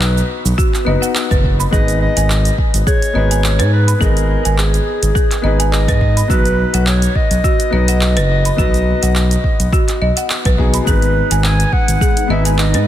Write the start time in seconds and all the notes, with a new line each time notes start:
Already playing: B1 B3 D#4 F#4 B4
0.01 clap, shaker
0.18 shaker
0.45 B1, shaker
0.58 F#4, kick, shaker
0.74 clap, shaker
0.85 F#1 B3 D#4 F#4 D#5
0.89 B4
1.02 F#5, shaker
1.15 clap, shaker
1.31 F#1 B4, kick, shaker
1.44 kick
1.60 B5, shaker
1.71 G#1 B3 D#4 G#4 D#5, kick, shaker
1.75 B4
1.88 closed hi-hat, shaker
2.01 D#5
2.17 G#1 G#5, closed hi-hat, shaker
2.30 clap, shaker
2.45 closed hi-hat, shaker
2.58 kick
2.74 G#1, closed hi-hat, shaker
2.87 G#4 C#5, kick, shaker
3.02 closed hi-hat, shaker
3.13 G#1 B3 D#4 G#4 B4 D#5
3.31 G#5, closed hi-hat, shaker
3.44 clap, shaker
3.59 G#2 B4, closed hi-hat, shaker
3.73 B4
3.88 B5, closed hi-hat, shaker
3.99 G#1 B3 D#4 G#4 A#4, kick, shaker
4.03 D#5
4.17 closed hi-hat, shaker
4.45 G#1 G#5, closed hi-hat, shaker
4.58 G#4, clap, shaker
4.74 closed hi-hat, shaker
5.03 G#1, closed hi-hat, shaker
5.15 G#4, kick, shaker
5.31 clap, closed hi-hat, shaker
5.42 G#1 B3 D#4 G#4 D#5
5.46 B4
5.60 G#5, closed hi-hat, shaker
5.72 D#5, clap, shaker
5.88 G#2 B4, kick, closed hi-hat, shaker
6.01 kick
6.17 B5, closed hi-hat, shaker
6.28 B1 B3 D#4 F#4 B4, kick, shaker
6.45 closed hi-hat, shaker
6.74 B1 F#5, closed hi-hat, shaker
6.87 C#5, clap, shaker
7.02 closed hi-hat, shaker
7.15 D#5, kick
7.31 B1, closed hi-hat, shaker
7.44 F#4, kick, shaker
7.60 closed hi-hat, shaker
7.70 B1 B3 D#4 F#4 D#5
7.74 B4
7.88 F#5, closed hi-hat, shaker
8.01 clap, shaker
8.17 F#1 B4, closed hi-hat, shaker
8.45 B5, closed hi-hat, shaker
8.56 B1 B3 D#4 F#4 B4, kick, shaker
8.74 closed hi-hat, shaker
9.03 B1 F#5, closed hi-hat, shaker
9.15 clap, shaker
9.31 closed hi-hat, shaker
9.44 kick
9.60 B1, closed hi-hat, shaker
9.72 F#4, kick, shaker
9.88 clap, closed hi-hat, shaker
10.02 B1 D#5
10.17 F#5, closed hi-hat, shaker
10.30 clap, shaker
10.45 B1 B4, kick, closed hi-hat, shaker
10.57 B3 D#4 F#4 G#4, kick
10.74 B5, closed hi-hat, shaker
10.85 G#1 G#3 B3 D#4 G#4 B4, kick, shaker
11.02 closed hi-hat, shaker
11.31 G#1 G#5, closed hi-hat, shaker
11.44 G#5, clap, shaker
11.60 closed hi-hat, shaker
11.73 F#5, kick
11.88 G#1, closed hi-hat, shaker
12.01 G#4, kick, shaker
12.17 closed hi-hat, shaker
12.28 G#1 B3 D#4 G#4 D#5 E5
12.32 B4
12.45 G#5, closed hi-hat, shaker
12.58 D#5, clap, shaker
12.74 G#2 B4, closed hi-hat, shaker